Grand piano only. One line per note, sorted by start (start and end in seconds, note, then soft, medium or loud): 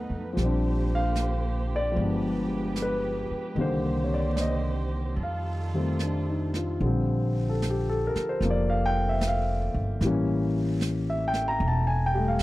0.00 0.32 F3 soft
0.00 0.37 F#3 soft
0.00 0.37 A3 soft
0.00 0.38 B3 soft
0.00 0.39 D#4 soft
0.00 0.39 A4 soft
0.00 0.39 F5 medium
0.00 0.39 F#5 medium
0.33 1.90 F3 soft
0.33 1.96 G3 soft
0.40 1.98 C4 soft
0.40 2.00 D4 medium
0.95 1.68 F5 medium
1.76 2.75 D5 medium
1.92 3.54 F3 soft
1.92 3.56 G#3 soft
1.99 3.58 B3 soft
1.99 3.59 D4 soft
2.82 3.61 B4 medium
3.55 5.17 D#3 soft
3.55 5.18 G3 soft
3.55 5.19 A#3 soft
3.60 5.19 D3 medium
3.60 4.00 C5 medium
4.04 4.12 C#5 medium
4.14 4.32 D5 medium
4.36 4.39 D5 soft
4.41 5.22 D#5 medium
5.23 6.54 F5 medium
5.74 6.82 D#3 soft
5.74 6.82 G3 soft
5.74 6.83 A3 soft
5.74 6.83 C4 soft
6.01 6.52 D4 soft
6.29 6.70 D#4 soft
6.56 6.97 F4 soft
6.80 10.02 D3 soft
6.80 8.40 F3 soft
6.80 10.02 G3 soft
6.85 10.04 C4 medium
7.49 7.62 A4 medium
7.70 7.93 G4 medium
7.89 8.16 A4 medium
8.07 8.24 A#4 medium
8.29 8.42 C5 medium
8.42 10.02 F3 soft
8.42 10.03 A#3 soft
8.50 8.73 D5 medium
8.70 8.96 F5 medium
8.86 9.03 G5 medium
9.09 9.22 E5 medium
9.28 9.58 F5 medium
10.02 12.43 E3 medium
10.02 12.12 G3 medium
10.02 12.43 A#3 medium
10.07 12.43 C#4 medium
11.10 11.35 E5 medium
11.28 11.44 G5 medium
11.48 11.60 A#5 medium
11.68 11.90 A5 medium
11.87 12.13 G#5 medium
12.06 12.22 G5 medium
12.14 12.43 G3 soft
12.14 12.43 A3 soft
12.28 12.40 F5 medium